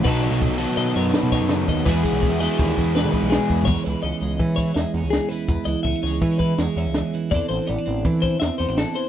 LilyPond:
<<
  \new Staff \with { instrumentName = "Clean electric guitar" } { \time 5/4 \key e \major \tempo 4 = 165 b'8 cis''8 r4 dis''8 cis''8 b'8 cis''4 dis''8 | b'8 gis'4 dis''8 cis''4 b'4 gis'4 | cis''8 b'8 dis''4 r8 cis''8 e''8 cis''8 gis'8 b'8~ | b'8 dis''8 e''8 cis''4 b'8 cis''8 e''4 r8 |
d''8 c''8 d''4 r8 c''8 e''8 c''8 a'8 c''8 | }
  \new Staff \with { instrumentName = "Overdriven electric guitar" } { \time 5/4 \key e \major <b, dis fis b dis' a'>4. <b, dis fis b dis' a'>2.~ <b, dis fis b dis' a'>8 | <e gis b e' gis'>4. <e gis b e' gis'>2.~ <e gis b e' gis'>8 | r1 r4 | r1 r4 |
r1 r4 | }
  \new Staff \with { instrumentName = "Clean electric guitar" } { \clef bass \time 5/4 \key e \major << { dis'4. fis'8 dis'4. dis'4. | <e gis fis'>8 gis4 fis'4 gis4 dis'8 r8 gis8~ | gis4 cis'8 gis8 cis'4 gis8 cis'4. | r4 b16 cis'16 gis8 b16 cis'8. gis8 cis'4. |
<e c' d' a'>4 b16 d'16 c'8 d'4 c'8 b16 d'4~ d'16 | } \\ { b,4. fis4. fis,4 cis8 dis8 | e,4. e4. b,4 e,4 | e,8 e2 e4. e,8 e8 | e,8 e2 e4. e,8 e8 |
e,8 e2 e4. e,8 e8 | } >> }
  \new Staff \with { instrumentName = "Picked electric bass" } { \clef bass \time 5/4 \key e \major b,,8. b,,8 b,,8 r16 b,8 fis,8 r16 b,8 fis,8. dis,8 | e,8 r16 b,,8 e,8 r16 dis,8 e,8. e16 r16 b,,8 r16 e,8 | e,16 r16 cis,16 r16 cis,16 r16 cis,8 e4 e,16 r16 e,16 cis,8 r8. | e,16 r16 cis,16 r16 cis,16 r16 cis,8 e4 e,16 r16 e,16 cis,8 r8. |
e,16 r16 a,,16 r16 a,,16 r16 a,,8 e4 e,16 r16 e,16 a,,8 r8. | }
  \new DrumStaff \with { instrumentName = "Drums" } \drummode { \time 5/4 <hh bd>8 hh8 <hh bd>8 <hh sn>8 hh8 hh8 <hh sn>8 <hh bd>8 <hh sn>8 <hh bd sn>8 | <hh bd>8 <hh bd>8 <hh bd>8 hh8 <hh bd sn>8 <hh bd sn>8 <hh sn>8 <hh bd sn>8 \tuplet 3/2 { <hh sn>16 r16 r16 bd16 r16 tomfh16 } | <cymc bd>8 <hh sn>8 hh8 hh8 <hh bd>8 <hh bd>8 <hh sn>8 <hh sn>8 <hh sn>8 hh8 | <hh bd>8 hh8 <hh bd>8 <hh sn>8 <hh bd>8 <hh bd>8 <hh sn>8 hh8 <hh sn>8 hh8 |
<hh bd>8 hh8 hh8 hh8 <hh bd sn>8 <hh bd>8 <hh sn>8 <hh sn>8 <hh sn>8 hh8 | }
>>